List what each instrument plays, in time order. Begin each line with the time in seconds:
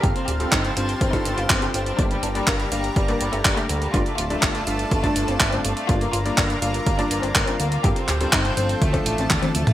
Already playing: analog synth pad F5
0.03 analog synth bass G1, electric grand piano G2 G3 C4 F4 A4, analog synth pad G4 C5 A5, violin section G4, kick, closed hi-hat
0.16 violin section C4, closed hi-hat
0.28 analog synth bass D1, violin section G4, closed hi-hat
0.40 electric grand piano G2 G3 C4 F4 A4, violin section C4, closed hi-hat
0.52 analog synth bass G1, violin section D#4, kick, clap, closed hi-hat
0.64 violin section C4, closed hi-hat
0.77 analog synth bass G1, electric grand piano G2 G3 C4 F4 C5, violin section C4, closed hi-hat
0.89 closed hi-hat
1.01 analog synth bass G1, violin section C4, kick, closed hi-hat
1.13 electric grand piano G2 G3 C4 F4 A4, violin section D#4, kick, closed hi-hat
1.25 analog synth bass G1, violin section C4, closed hi-hat
1.38 analog synth bass G1, violin section F4, closed hi-hat
1.50 analog synth bass G1, violin section C4, kick, clap, closed hi-hat
1.62 electric grand piano G2 G3 C4 F4 A4, violin section G4, closed hi-hat
1.74 analog synth bass G1, violin section C4, closed hi-hat
1.86 violin section C4, closed hi-hat
1.99 analog synth bass G1, electric grand piano G2 A#3 D4 G4 D5, violin section D4, analog synth pad A#4 D5 A#5, kick, closed hi-hat
2.11 violin section G3, closed hi-hat
2.23 analog synth bass G1, violin section D4, closed hi-hat
2.35 electric grand piano G2 A#3 D4 G4 D5, violin section G3, closed hi-hat
2.47 analog synth bass G1, violin section A#3, kick, clap, closed hi-hat
2.60 violin section G3, closed hi-hat
2.72 analog synth bass G1, electric grand piano G2 A#3 D4 G4 F5, violin section G3, closed hi-hat
2.84 closed hi-hat
2.96 analog synth bass G1, violin section G3, kick, closed hi-hat
3.08 electric grand piano G2 A#3 D4 G4 D5, violin section A#3, closed hi-hat
3.21 analog synth bass G1, violin section G3, closed hi-hat
3.33 analog synth bass G1, violin section A3, closed hi-hat
3.45 analog synth bass G1, violin section G3, kick, clap, closed hi-hat
3.57 electric grand piano G2 A#3 D4 G4 D5, violin section A3, closed hi-hat
3.69 analog synth bass D2, violin section G3, closed hi-hat
3.82 violin section G3, closed hi-hat
3.94 analog synth bass G1, electric grand piano G2 A3 D4 F4 D5, analog synth pad F4 A4 A5, violin section F4, kick, closed hi-hat
4.06 violin section A3, closed hi-hat
4.18 analog synth bass D1, violin section F4, closed hi-hat
4.30 electric grand piano G2 A3 D4 F4 D5, violin section A3, closed hi-hat
4.43 analog synth bass G1, violin section D4, kick, clap, closed hi-hat
4.55 violin section A3, closed hi-hat
4.67 analog synth bass G1, electric grand piano G2 A3 D4 F4 F5, violin section A3, closed hi-hat
4.79 closed hi-hat
4.91 analog synth bass G1, violin section A3, kick, closed hi-hat
5.04 electric grand piano G2 A3 D4 F4 D5, violin section D4, kick, closed hi-hat
5.16 analog synth bass G1, violin section A3, closed hi-hat
5.28 analog synth bass G1, violin section C4, closed hi-hat
5.40 analog synth bass G1, violin section A3, kick, clap, closed hi-hat
5.52 electric grand piano G2 A3 D4 F4 D5, violin section C4, closed hi-hat
5.65 analog synth bass G1, violin section A3, closed hi-hat
5.77 violin section A3, closed hi-hat
5.89 analog synth bass G1, electric grand piano G2 A#3 D4 F4 D5, violin section F4, analog synth pad A#4 A#5, kick, closed hi-hat
6.01 violin section A#3, closed hi-hat
6.13 analog synth bass G1, violin section F4, closed hi-hat
6.26 electric grand piano G2 A#3 D4 F4 D5, violin section A#3, closed hi-hat
6.38 analog synth bass G1, violin section D4, kick, clap, closed hi-hat
6.50 violin section A#3, closed hi-hat
6.62 analog synth bass G1, electric grand piano G2 A#3 D4 F4 F5, violin section A#3, closed hi-hat
6.74 closed hi-hat
6.86 analog synth bass G1, violin section A#3, kick, closed hi-hat
6.99 electric grand piano G2 A#3 D4 F4 D5, violin section D4, closed hi-hat
7.11 analog synth bass G1, violin section A#3, closed hi-hat
7.23 analog synth bass G1, violin section C4, closed hi-hat
7.35 analog synth bass G1, violin section A#3, kick, clap, closed hi-hat
7.47 electric grand piano G2 A#3 D4 F4 D5, violin section C4, closed hi-hat
7.60 analog synth bass D2, violin section A#3, closed hi-hat
7.72 violin section A#3, closed hi-hat
7.84 analog synth bass G1, electric grand piano G2 G3 C4 F4 A4, violin section G4, analog synth pad A4 C5 G5, kick, closed hi-hat
7.96 violin section C4, closed hi-hat
8.08 analog synth bass D1, violin section G4, clap, closed hi-hat
8.21 electric grand piano G2 G3 C4 F4 A4, violin section C4, closed hi-hat
8.33 analog synth bass G1, violin section D#4, kick, clap, closed hi-hat
8.45 violin section C4, closed hi-hat
8.57 analog synth bass G1, electric grand piano F3 A3 D4 C5, violin section C4, closed hi-hat
8.69 closed hi-hat
8.82 analog synth bass D2, violin section A3, analog synth pad D5 A5, kick, closed hi-hat
8.94 electric grand piano F3 A3 D4 A4, violin section C4, kick, closed hi-hat
9.06 analog synth bass A1, violin section A3, closed hi-hat
9.18 analog synth bass A1, violin section C4, closed hi-hat
9.30 analog synth bass D2, violin section A3, kick, clap, closed hi-hat, high tom
9.43 electric grand piano F3 A3 D4 A4, violin section C4, closed hi-hat, high tom
9.55 analog synth bass D2, violin section A3, closed hi-hat
9.67 violin section A3, closed hi-hat, mid tom